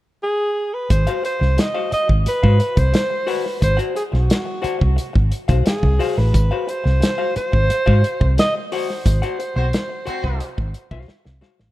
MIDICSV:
0, 0, Header, 1, 8, 480
1, 0, Start_track
1, 0, Tempo, 678733
1, 641, Time_signature, 4, 2, 24, 8
1, 8288, End_track
2, 0, Start_track
2, 0, Title_t, "Alto saxophone"
2, 0, Program_c, 0, 65
2, 164, Note_on_c, 0, 68, 106
2, 522, Note_on_c, 0, 71, 87
2, 533, Note_off_c, 0, 68, 0
2, 641, Note_on_c, 0, 72, 102
2, 651, Note_off_c, 0, 71, 0
2, 881, Note_off_c, 0, 72, 0
2, 886, Note_on_c, 0, 72, 96
2, 1134, Note_on_c, 0, 75, 98
2, 1145, Note_off_c, 0, 72, 0
2, 1364, Note_off_c, 0, 75, 0
2, 1368, Note_on_c, 0, 75, 106
2, 1475, Note_off_c, 0, 75, 0
2, 1615, Note_on_c, 0, 71, 99
2, 1972, Note_on_c, 0, 72, 101
2, 1982, Note_off_c, 0, 71, 0
2, 2330, Note_on_c, 0, 71, 81
2, 2341, Note_off_c, 0, 72, 0
2, 2567, Note_off_c, 0, 71, 0
2, 2570, Note_on_c, 0, 72, 107
2, 2677, Note_off_c, 0, 72, 0
2, 2803, Note_on_c, 0, 68, 83
2, 2857, Note_off_c, 0, 68, 0
2, 2918, Note_on_c, 0, 66, 73
2, 3661, Note_off_c, 0, 66, 0
2, 4014, Note_on_c, 0, 68, 94
2, 4371, Note_on_c, 0, 71, 79
2, 4381, Note_off_c, 0, 68, 0
2, 4740, Note_on_c, 0, 72, 99
2, 4751, Note_off_c, 0, 71, 0
2, 5209, Note_off_c, 0, 72, 0
2, 5213, Note_on_c, 0, 72, 108
2, 5900, Note_off_c, 0, 72, 0
2, 5934, Note_on_c, 0, 75, 109
2, 6040, Note_off_c, 0, 75, 0
2, 6175, Note_on_c, 0, 72, 83
2, 7817, Note_off_c, 0, 72, 0
2, 8288, End_track
3, 0, Start_track
3, 0, Title_t, "Hollow-body jazz guitar"
3, 0, Program_c, 1, 26
3, 755, Note_on_c, 1, 77, 86
3, 761, Note_on_c, 1, 72, 79
3, 763, Note_on_c, 1, 66, 66
3, 864, Note_off_c, 1, 66, 0
3, 866, Note_off_c, 1, 72, 0
3, 870, Note_off_c, 1, 77, 0
3, 1234, Note_on_c, 1, 77, 79
3, 1236, Note_on_c, 1, 72, 62
3, 1242, Note_on_c, 1, 66, 61
3, 1342, Note_off_c, 1, 66, 0
3, 1346, Note_off_c, 1, 72, 0
3, 1347, Note_off_c, 1, 77, 0
3, 1717, Note_on_c, 1, 77, 82
3, 1721, Note_on_c, 1, 72, 68
3, 1725, Note_on_c, 1, 66, 70
3, 1824, Note_off_c, 1, 66, 0
3, 1827, Note_off_c, 1, 72, 0
3, 1832, Note_off_c, 1, 77, 0
3, 2310, Note_on_c, 1, 66, 93
3, 2313, Note_on_c, 1, 72, 100
3, 2319, Note_on_c, 1, 78, 100
3, 2428, Note_off_c, 1, 66, 0
3, 2430, Note_off_c, 1, 72, 0
3, 2433, Note_off_c, 1, 78, 0
3, 2665, Note_on_c, 1, 78, 92
3, 2671, Note_on_c, 1, 72, 78
3, 2676, Note_on_c, 1, 66, 78
3, 2786, Note_off_c, 1, 78, 0
3, 2788, Note_off_c, 1, 66, 0
3, 2789, Note_off_c, 1, 72, 0
3, 3266, Note_on_c, 1, 66, 78
3, 3270, Note_on_c, 1, 72, 87
3, 3275, Note_on_c, 1, 78, 94
3, 3385, Note_off_c, 1, 78, 0
3, 3386, Note_off_c, 1, 72, 0
3, 3387, Note_off_c, 1, 66, 0
3, 3875, Note_on_c, 1, 77, 80
3, 3881, Note_on_c, 1, 72, 71
3, 3885, Note_on_c, 1, 66, 63
3, 3990, Note_off_c, 1, 66, 0
3, 3991, Note_off_c, 1, 72, 0
3, 3992, Note_off_c, 1, 77, 0
3, 4238, Note_on_c, 1, 66, 77
3, 4243, Note_on_c, 1, 72, 90
3, 4247, Note_on_c, 1, 77, 94
3, 4353, Note_off_c, 1, 66, 0
3, 4353, Note_off_c, 1, 77, 0
3, 4356, Note_off_c, 1, 72, 0
3, 4603, Note_on_c, 1, 77, 74
3, 4609, Note_on_c, 1, 72, 69
3, 4614, Note_on_c, 1, 66, 63
3, 4710, Note_off_c, 1, 66, 0
3, 4712, Note_off_c, 1, 72, 0
3, 4716, Note_off_c, 1, 77, 0
3, 5077, Note_on_c, 1, 77, 84
3, 5080, Note_on_c, 1, 72, 66
3, 5083, Note_on_c, 1, 66, 59
3, 5193, Note_off_c, 1, 77, 0
3, 5194, Note_off_c, 1, 72, 0
3, 5196, Note_off_c, 1, 66, 0
3, 5559, Note_on_c, 1, 72, 95
3, 5559, Note_on_c, 1, 77, 96
3, 5563, Note_on_c, 1, 66, 76
3, 5673, Note_off_c, 1, 66, 0
3, 5674, Note_off_c, 1, 72, 0
3, 5674, Note_off_c, 1, 77, 0
3, 6167, Note_on_c, 1, 66, 82
3, 6172, Note_on_c, 1, 72, 76
3, 6175, Note_on_c, 1, 78, 95
3, 6277, Note_off_c, 1, 66, 0
3, 6280, Note_off_c, 1, 72, 0
3, 6282, Note_off_c, 1, 78, 0
3, 6521, Note_on_c, 1, 78, 92
3, 6528, Note_on_c, 1, 72, 77
3, 6530, Note_on_c, 1, 66, 72
3, 6634, Note_off_c, 1, 78, 0
3, 6635, Note_off_c, 1, 66, 0
3, 6637, Note_off_c, 1, 72, 0
3, 7111, Note_on_c, 1, 66, 73
3, 7116, Note_on_c, 1, 72, 72
3, 7120, Note_on_c, 1, 78, 86
3, 7228, Note_off_c, 1, 66, 0
3, 7231, Note_off_c, 1, 72, 0
3, 7233, Note_off_c, 1, 78, 0
3, 7716, Note_on_c, 1, 77, 95
3, 7722, Note_on_c, 1, 72, 67
3, 7724, Note_on_c, 1, 66, 73
3, 7830, Note_off_c, 1, 66, 0
3, 7833, Note_off_c, 1, 72, 0
3, 7838, Note_off_c, 1, 77, 0
3, 8071, Note_on_c, 1, 66, 96
3, 8074, Note_on_c, 1, 72, 96
3, 8078, Note_on_c, 1, 77, 97
3, 8183, Note_off_c, 1, 77, 0
3, 8186, Note_off_c, 1, 66, 0
3, 8188, Note_off_c, 1, 72, 0
3, 8288, End_track
4, 0, Start_track
4, 0, Title_t, "Horn section"
4, 0, Program_c, 2, 61
4, 6761, Note_on_c, 2, 66, 81
4, 6763, Note_on_c, 2, 60, 78
4, 6764, Note_on_c, 2, 72, 98
4, 6838, Note_off_c, 2, 66, 0
4, 6839, Note_off_c, 2, 60, 0
4, 6840, Note_off_c, 2, 72, 0
4, 7118, Note_on_c, 2, 66, 111
4, 7119, Note_on_c, 2, 72, 110
4, 7120, Note_on_c, 2, 60, 105
4, 7425, Note_off_c, 2, 66, 0
4, 7425, Note_off_c, 2, 72, 0
4, 7426, Note_off_c, 2, 60, 0
4, 8288, End_track
5, 0, Start_track
5, 0, Title_t, "Fingered electric bass"
5, 0, Program_c, 3, 33
5, 640, Note_on_c, 3, 32, 107
5, 747, Note_off_c, 3, 32, 0
5, 997, Note_on_c, 3, 36, 82
5, 1105, Note_off_c, 3, 36, 0
5, 1483, Note_on_c, 3, 32, 89
5, 1589, Note_off_c, 3, 32, 0
5, 1725, Note_on_c, 3, 44, 94
5, 1829, Note_off_c, 3, 44, 0
5, 1960, Note_on_c, 3, 36, 93
5, 2067, Note_off_c, 3, 36, 0
5, 2560, Note_on_c, 3, 32, 97
5, 2667, Note_off_c, 3, 32, 0
5, 2922, Note_on_c, 3, 35, 87
5, 3028, Note_off_c, 3, 35, 0
5, 3405, Note_on_c, 3, 36, 94
5, 3510, Note_off_c, 3, 36, 0
5, 3647, Note_on_c, 3, 32, 86
5, 3752, Note_off_c, 3, 32, 0
5, 3883, Note_on_c, 3, 35, 96
5, 3990, Note_off_c, 3, 35, 0
5, 4122, Note_on_c, 3, 36, 102
5, 4229, Note_off_c, 3, 36, 0
5, 4368, Note_on_c, 3, 33, 88
5, 4472, Note_off_c, 3, 33, 0
5, 4488, Note_on_c, 3, 32, 107
5, 4592, Note_off_c, 3, 32, 0
5, 4847, Note_on_c, 3, 36, 86
5, 4952, Note_off_c, 3, 36, 0
5, 5329, Note_on_c, 3, 32, 85
5, 5433, Note_off_c, 3, 32, 0
5, 5568, Note_on_c, 3, 44, 90
5, 5672, Note_off_c, 3, 44, 0
5, 5808, Note_on_c, 3, 36, 99
5, 5912, Note_off_c, 3, 36, 0
5, 6407, Note_on_c, 3, 32, 95
5, 6511, Note_off_c, 3, 32, 0
5, 6761, Note_on_c, 3, 35, 94
5, 6868, Note_off_c, 3, 35, 0
5, 7243, Note_on_c, 3, 36, 101
5, 7348, Note_off_c, 3, 36, 0
5, 7483, Note_on_c, 3, 32, 100
5, 7588, Note_off_c, 3, 32, 0
5, 7716, Note_on_c, 3, 35, 92
5, 7823, Note_off_c, 3, 35, 0
5, 7964, Note_on_c, 3, 36, 91
5, 8067, Note_off_c, 3, 36, 0
5, 8203, Note_on_c, 3, 33, 87
5, 8288, Note_off_c, 3, 33, 0
5, 8288, End_track
6, 0, Start_track
6, 0, Title_t, "Muted fingered electric bass strokes"
6, 1359, Note_on_c, 9, 29, 51
6, 1430, Note_off_c, 9, 29, 0
6, 1603, Note_on_c, 9, 29, 47
6, 1674, Note_off_c, 9, 29, 0
6, 3281, Note_on_c, 9, 29, 49
6, 3352, Note_off_c, 9, 29, 0
6, 4006, Note_on_c, 9, 29, 46
6, 4076, Note_off_c, 9, 29, 0
6, 5206, Note_on_c, 9, 29, 53
6, 5277, Note_off_c, 9, 29, 0
6, 5446, Note_on_c, 9, 29, 53
6, 5517, Note_off_c, 9, 29, 0
6, 7123, Note_on_c, 9, 29, 52
6, 7194, Note_off_c, 9, 29, 0
6, 7844, Note_on_c, 9, 29, 43
6, 7914, Note_off_c, 9, 29, 0
6, 8288, End_track
7, 0, Start_track
7, 0, Title_t, "Muted hollow-body jazz guitar strokes"
7, 638, Note_on_c, 9, 29, 37
7, 708, Note_off_c, 9, 29, 0
7, 873, Note_on_c, 9, 29, 49
7, 943, Note_off_c, 9, 29, 0
7, 991, Note_on_c, 9, 29, 50
7, 1062, Note_off_c, 9, 29, 0
7, 1109, Note_on_c, 9, 29, 39
7, 1180, Note_off_c, 9, 29, 0
7, 1351, Note_on_c, 9, 29, 42
7, 1421, Note_off_c, 9, 29, 0
7, 1471, Note_on_c, 9, 29, 44
7, 1542, Note_off_c, 9, 29, 0
7, 1600, Note_on_c, 9, 29, 43
7, 1671, Note_off_c, 9, 29, 0
7, 1832, Note_on_c, 9, 29, 36
7, 1903, Note_off_c, 9, 29, 0
7, 1952, Note_on_c, 9, 29, 42
7, 2023, Note_off_c, 9, 29, 0
7, 2068, Note_on_c, 9, 29, 41
7, 2139, Note_off_c, 9, 29, 0
7, 2193, Note_on_c, 9, 29, 45
7, 2264, Note_off_c, 9, 29, 0
7, 2438, Note_on_c, 9, 29, 50
7, 2508, Note_off_c, 9, 29, 0
7, 2552, Note_on_c, 9, 29, 31
7, 2622, Note_off_c, 9, 29, 0
7, 2797, Note_on_c, 9, 29, 48
7, 2867, Note_off_c, 9, 29, 0
7, 2913, Note_on_c, 9, 29, 49
7, 2984, Note_off_c, 9, 29, 0
7, 3150, Note_on_c, 9, 29, 57
7, 3220, Note_off_c, 9, 29, 0
7, 3387, Note_on_c, 9, 29, 55
7, 3458, Note_off_c, 9, 29, 0
7, 3508, Note_on_c, 9, 29, 39
7, 3579, Note_off_c, 9, 29, 0
7, 3630, Note_on_c, 9, 29, 54
7, 3700, Note_off_c, 9, 29, 0
7, 3998, Note_on_c, 9, 29, 42
7, 4069, Note_off_c, 9, 29, 0
7, 4126, Note_on_c, 9, 29, 58
7, 4197, Note_off_c, 9, 29, 0
7, 4361, Note_on_c, 9, 29, 48
7, 4432, Note_off_c, 9, 29, 0
7, 4482, Note_on_c, 9, 29, 37
7, 4553, Note_off_c, 9, 29, 0
7, 4719, Note_on_c, 9, 29, 46
7, 4789, Note_off_c, 9, 29, 0
7, 4837, Note_on_c, 9, 29, 53
7, 4908, Note_off_c, 9, 29, 0
7, 4952, Note_on_c, 9, 29, 50
7, 5023, Note_off_c, 9, 29, 0
7, 5204, Note_on_c, 9, 29, 48
7, 5275, Note_off_c, 9, 29, 0
7, 5320, Note_on_c, 9, 29, 52
7, 5391, Note_off_c, 9, 29, 0
7, 5442, Note_on_c, 9, 29, 36
7, 5513, Note_off_c, 9, 29, 0
7, 5681, Note_on_c, 9, 29, 36
7, 5752, Note_off_c, 9, 29, 0
7, 5802, Note_on_c, 9, 29, 53
7, 5872, Note_off_c, 9, 29, 0
7, 5923, Note_on_c, 9, 29, 40
7, 5993, Note_off_c, 9, 29, 0
7, 6044, Note_on_c, 9, 29, 50
7, 6115, Note_off_c, 9, 29, 0
7, 6292, Note_on_c, 9, 29, 44
7, 6363, Note_off_c, 9, 29, 0
7, 6409, Note_on_c, 9, 29, 50
7, 6480, Note_off_c, 9, 29, 0
7, 6643, Note_on_c, 9, 29, 43
7, 6714, Note_off_c, 9, 29, 0
7, 6759, Note_on_c, 9, 29, 52
7, 6830, Note_off_c, 9, 29, 0
7, 6995, Note_on_c, 9, 29, 43
7, 7066, Note_off_c, 9, 29, 0
7, 7239, Note_on_c, 9, 29, 53
7, 7310, Note_off_c, 9, 29, 0
7, 7356, Note_on_c, 9, 29, 49
7, 7427, Note_off_c, 9, 29, 0
7, 7479, Note_on_c, 9, 29, 55
7, 7550, Note_off_c, 9, 29, 0
7, 7842, Note_on_c, 9, 29, 46
7, 7913, Note_off_c, 9, 29, 0
7, 7953, Note_on_c, 9, 29, 51
7, 8024, Note_off_c, 9, 29, 0
7, 8191, Note_on_c, 9, 29, 50
7, 8262, Note_off_c, 9, 29, 0
7, 8288, End_track
8, 0, Start_track
8, 0, Title_t, "Drums"
8, 638, Note_on_c, 9, 42, 102
8, 639, Note_on_c, 9, 36, 100
8, 709, Note_off_c, 9, 42, 0
8, 710, Note_off_c, 9, 36, 0
8, 756, Note_on_c, 9, 42, 51
8, 827, Note_off_c, 9, 42, 0
8, 882, Note_on_c, 9, 42, 75
8, 953, Note_off_c, 9, 42, 0
8, 1003, Note_on_c, 9, 38, 38
8, 1074, Note_off_c, 9, 38, 0
8, 1117, Note_on_c, 9, 42, 93
8, 1125, Note_on_c, 9, 38, 127
8, 1188, Note_off_c, 9, 42, 0
8, 1195, Note_off_c, 9, 38, 0
8, 1359, Note_on_c, 9, 42, 79
8, 1430, Note_off_c, 9, 42, 0
8, 1480, Note_on_c, 9, 36, 91
8, 1551, Note_off_c, 9, 36, 0
8, 1599, Note_on_c, 9, 42, 86
8, 1670, Note_off_c, 9, 42, 0
8, 1722, Note_on_c, 9, 36, 95
8, 1793, Note_off_c, 9, 36, 0
8, 1837, Note_on_c, 9, 42, 75
8, 1907, Note_off_c, 9, 42, 0
8, 1959, Note_on_c, 9, 42, 58
8, 1960, Note_on_c, 9, 36, 105
8, 2030, Note_off_c, 9, 42, 0
8, 2031, Note_off_c, 9, 36, 0
8, 2077, Note_on_c, 9, 42, 84
8, 2086, Note_on_c, 9, 38, 118
8, 2148, Note_off_c, 9, 42, 0
8, 2156, Note_off_c, 9, 38, 0
8, 2318, Note_on_c, 9, 46, 84
8, 2389, Note_off_c, 9, 46, 0
8, 2446, Note_on_c, 9, 38, 35
8, 2517, Note_off_c, 9, 38, 0
8, 2561, Note_on_c, 9, 36, 95
8, 2561, Note_on_c, 9, 42, 101
8, 2631, Note_off_c, 9, 36, 0
8, 2632, Note_off_c, 9, 42, 0
8, 2681, Note_on_c, 9, 42, 48
8, 2752, Note_off_c, 9, 42, 0
8, 2803, Note_on_c, 9, 42, 69
8, 2874, Note_off_c, 9, 42, 0
8, 2925, Note_on_c, 9, 38, 38
8, 2996, Note_off_c, 9, 38, 0
8, 3041, Note_on_c, 9, 42, 99
8, 3049, Note_on_c, 9, 38, 123
8, 3112, Note_off_c, 9, 42, 0
8, 3120, Note_off_c, 9, 38, 0
8, 3282, Note_on_c, 9, 42, 76
8, 3353, Note_off_c, 9, 42, 0
8, 3404, Note_on_c, 9, 36, 92
8, 3475, Note_off_c, 9, 36, 0
8, 3522, Note_on_c, 9, 42, 73
8, 3592, Note_off_c, 9, 42, 0
8, 3646, Note_on_c, 9, 36, 101
8, 3716, Note_off_c, 9, 36, 0
8, 3759, Note_on_c, 9, 42, 77
8, 3830, Note_off_c, 9, 42, 0
8, 3880, Note_on_c, 9, 42, 55
8, 3883, Note_on_c, 9, 36, 95
8, 3950, Note_off_c, 9, 42, 0
8, 3953, Note_off_c, 9, 36, 0
8, 4001, Note_on_c, 9, 42, 78
8, 4009, Note_on_c, 9, 38, 110
8, 4071, Note_off_c, 9, 42, 0
8, 4080, Note_off_c, 9, 38, 0
8, 4123, Note_on_c, 9, 36, 85
8, 4193, Note_off_c, 9, 36, 0
8, 4244, Note_on_c, 9, 46, 77
8, 4315, Note_off_c, 9, 46, 0
8, 4371, Note_on_c, 9, 38, 38
8, 4442, Note_off_c, 9, 38, 0
8, 4485, Note_on_c, 9, 36, 103
8, 4487, Note_on_c, 9, 42, 87
8, 4556, Note_off_c, 9, 36, 0
8, 4557, Note_off_c, 9, 42, 0
8, 4729, Note_on_c, 9, 42, 66
8, 4799, Note_off_c, 9, 42, 0
8, 4850, Note_on_c, 9, 38, 41
8, 4921, Note_off_c, 9, 38, 0
8, 4967, Note_on_c, 9, 42, 98
8, 4975, Note_on_c, 9, 38, 115
8, 5038, Note_off_c, 9, 42, 0
8, 5045, Note_off_c, 9, 38, 0
8, 5205, Note_on_c, 9, 42, 71
8, 5276, Note_off_c, 9, 42, 0
8, 5327, Note_on_c, 9, 36, 87
8, 5398, Note_off_c, 9, 36, 0
8, 5446, Note_on_c, 9, 42, 86
8, 5517, Note_off_c, 9, 42, 0
8, 5569, Note_on_c, 9, 36, 102
8, 5640, Note_off_c, 9, 36, 0
8, 5687, Note_on_c, 9, 42, 81
8, 5757, Note_off_c, 9, 42, 0
8, 5807, Note_on_c, 9, 36, 97
8, 5877, Note_off_c, 9, 36, 0
8, 5927, Note_on_c, 9, 42, 86
8, 5935, Note_on_c, 9, 38, 115
8, 5997, Note_off_c, 9, 42, 0
8, 6006, Note_off_c, 9, 38, 0
8, 6167, Note_on_c, 9, 46, 87
8, 6238, Note_off_c, 9, 46, 0
8, 6295, Note_on_c, 9, 38, 41
8, 6366, Note_off_c, 9, 38, 0
8, 6405, Note_on_c, 9, 36, 103
8, 6406, Note_on_c, 9, 42, 99
8, 6476, Note_off_c, 9, 36, 0
8, 6477, Note_off_c, 9, 42, 0
8, 6527, Note_on_c, 9, 42, 44
8, 6597, Note_off_c, 9, 42, 0
8, 6646, Note_on_c, 9, 42, 76
8, 6717, Note_off_c, 9, 42, 0
8, 6883, Note_on_c, 9, 42, 93
8, 6891, Note_on_c, 9, 38, 127
8, 6954, Note_off_c, 9, 42, 0
8, 6961, Note_off_c, 9, 38, 0
8, 7118, Note_on_c, 9, 42, 76
8, 7189, Note_off_c, 9, 42, 0
8, 7241, Note_on_c, 9, 36, 86
8, 7312, Note_off_c, 9, 36, 0
8, 7358, Note_on_c, 9, 42, 87
8, 7428, Note_off_c, 9, 42, 0
8, 7482, Note_on_c, 9, 36, 102
8, 7553, Note_off_c, 9, 36, 0
8, 7597, Note_on_c, 9, 42, 78
8, 7668, Note_off_c, 9, 42, 0
8, 7717, Note_on_c, 9, 36, 104
8, 7787, Note_off_c, 9, 36, 0
8, 7837, Note_on_c, 9, 38, 59
8, 7908, Note_off_c, 9, 38, 0
8, 7959, Note_on_c, 9, 38, 60
8, 8029, Note_off_c, 9, 38, 0
8, 8078, Note_on_c, 9, 38, 97
8, 8149, Note_off_c, 9, 38, 0
8, 8199, Note_on_c, 9, 38, 86
8, 8270, Note_off_c, 9, 38, 0
8, 8288, End_track
0, 0, End_of_file